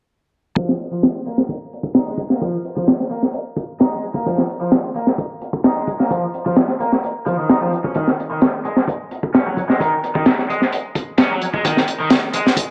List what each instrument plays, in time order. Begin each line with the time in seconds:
0.56 overdriven electric guitar F3, kick, closed hi-hat
0.69 snare
0.80 closed hi-hat
0.92 overdriven electric guitar F3
1.03 snare, closed hi-hat
1.26 overdriven electric guitar A#3, closed hi-hat
1.38 snare
1.49 kick, closed hi-hat
1.73 closed hi-hat
1.83 kick
1.95 overdriven electric guitar D#4, snare, closed hi-hat
2.08 overdriven electric guitar G#3
2.18 kick, closed hi-hat
2.30 overdriven electric guitar A#3, snare
2.41 overdriven electric guitar F3, kick, closed hi-hat
2.64 closed hi-hat
2.76 overdriven electric guitar F3, kick
2.87 snare, closed hi-hat
3.00 snare
3.11 overdriven electric guitar A#3, closed hi-hat
3.23 snare
3.33 closed hi-hat
3.57 kick, closed hi-hat
3.79 overdriven electric guitar D#4, snare, closed hi-hat
3.92 overdriven electric guitar G#3
4.03 closed hi-hat
4.14 overdriven electric guitar A#3, kick
4.26 overdriven electric guitar F3, kick, closed hi-hat
4.38 snare
4.50 closed hi-hat
4.61 overdriven electric guitar F3
4.72 snare, closed hi-hat
4.95 overdriven electric guitar A#3, closed hi-hat
5.07 snare
5.18 kick, closed hi-hat
5.41 closed hi-hat
5.53 kick
5.64 overdriven electric guitar D#4, snare, closed hi-hat
5.77 overdriven electric guitar G#3
5.88 kick, closed hi-hat
6.00 overdriven electric guitar A#3, snare
6.11 overdriven electric guitar F3, kick, closed hi-hat
6.34 closed hi-hat
6.46 overdriven electric guitar F3, kick
6.56 snare, closed hi-hat
6.68 snare
6.80 overdriven electric guitar A#3, closed hi-hat
6.92 snare
7.04 closed hi-hat
7.26 overdriven electric guitar F3, kick, closed hi-hat
7.38 overdriven electric guitar D#3
7.49 overdriven electric guitar D#4, snare, closed hi-hat
7.61 overdriven electric guitar F3
7.73 closed hi-hat
7.84 overdriven electric guitar C#4, kick
7.94 overdriven electric guitar D#3, kick, closed hi-hat
8.08 snare
8.20 closed hi-hat
8.31 overdriven electric guitar D#3
8.41 snare, closed hi-hat
8.65 overdriven electric guitar G#3, closed hi-hat
8.76 snare
8.88 kick, closed hi-hat
9.11 closed hi-hat
9.23 kick
9.34 overdriven electric guitar C#4, snare, closed hi-hat
9.46 overdriven electric guitar F#3
9.57 kick, closed hi-hat
9.69 overdriven electric guitar G#3, snare
9.80 overdriven electric guitar D#3, kick, closed hi-hat
10.04 closed hi-hat
10.15 overdriven electric guitar D#3, kick
10.26 snare, closed hi-hat
10.38 snare
10.50 overdriven electric guitar G#3, closed hi-hat
10.62 snare
10.72 closed hi-hat
10.95 kick, closed hi-hat
11.18 overdriven electric guitar C#4, snare, closed hi-hat
11.31 overdriven electric guitar F#3
11.41 closed hi-hat
11.54 overdriven electric guitar G#3, kick
11.65 overdriven electric guitar D#3, kick, closed hi-hat
11.77 snare
11.88 closed hi-hat
12.00 overdriven electric guitar D#3
12.10 snare, closed hi-hat
12.33 overdriven electric guitar G#3, closed hi-hat
12.47 snare
12.57 kick, closed hi-hat